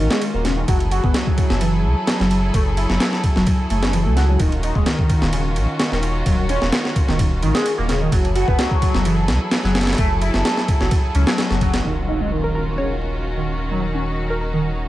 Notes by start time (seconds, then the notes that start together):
Already playing: D#3 C#4 F4 F#4
0.10 G#3, snare
0.21 ride
0.34 D#1 A#3
0.45 C#3, snare, ride
0.57 D#3
0.68 F#1 F#3 E4 G#4 A4, kick, ride
0.80 ride
0.91 F#4, ride
1.04 F#1 B3, kick
1.14 F#3, snare, ride
1.27 kick
1.38 kick, ride
1.50 F#1, snare
1.61 E3, ride
1.84 C#2
2.07 snare, ride
2.20 F#1 F#3, snare
2.31 ride
2.54 F#1 A3, kick, ride
2.77 E4, ride
2.90 F#1, snare
3.00 snare, ride
3.13 snare
3.24 kick, ride
3.36 F#1 F#3, snare
3.47 kick, ride
3.70 F#1 A3, ride
3.83 C#4, snare
3.93 E3, ride
4.06 C#2 A3
4.16 F#4, snare, ride
4.29 F#3
4.40 D#1 D#3 C#4 F4 F#4, kick, ride
4.52 ride
4.63 D#4, ride
4.75 D#1 G#3, kick
4.86 D#3, snare, ride
4.99 kick
5.10 kick, ride
5.22 D#1, snare
5.33 C#3, ride
5.56 A#1, ride
5.79 snare, ride
5.92 D#1 D#3, snare
6.03 ride
6.26 D#1 F#3, kick, ride
6.49 C#4, ride
6.62 D#1, snare
6.72 snare, ride
6.85 snare
6.96 kick, ride
7.08 D#1 D#3, snare
7.19 kick, ride
7.42 A#1 D#3, ride
7.55 G#3, snare
7.66 ride
7.78 D#1 A#3
7.89 C#3, snare, ride
8.01 D#3
8.12 F#1 F#3 E4 G#4 A4, kick, ride
8.25 ride
8.36 F#4, ride
8.48 F#1 B3, kick
8.59 F#3, snare, ride
8.71 kick
8.82 kick, ride
8.94 F#1, snare
9.05 E3, ride
9.28 C#2, snare, ride
9.51 snare, ride
9.64 F#1 F#3, snare
9.75 snare, ride
9.81 snare, ride
9.87 snare, ride
9.93 snare, ride
9.98 F#1 A3, kick, ride
10.21 E4, ride
10.34 F#1, snare
10.45 snare, ride
10.57 snare
10.68 kick, ride
10.81 F#1 F#3, snare
10.91 kick, ride
11.15 C#2 C#4, ride
11.27 F#3, snare
11.38 snare, ride
11.50 F#1 F#3, snare
11.61 F#3, kick, ride
11.74 F#3, snare, ride
11.85 D#1 D#3 C#4 F4 F#4, impact
12.08 D#4
12.21 G#3
12.31 D#3
12.44 A#4
12.55 A#4
12.78 C#3 C#5
13.37 D#3
13.70 F#3 D#4
13.94 C#4
14.30 A#4
14.41 A#4
14.53 D#3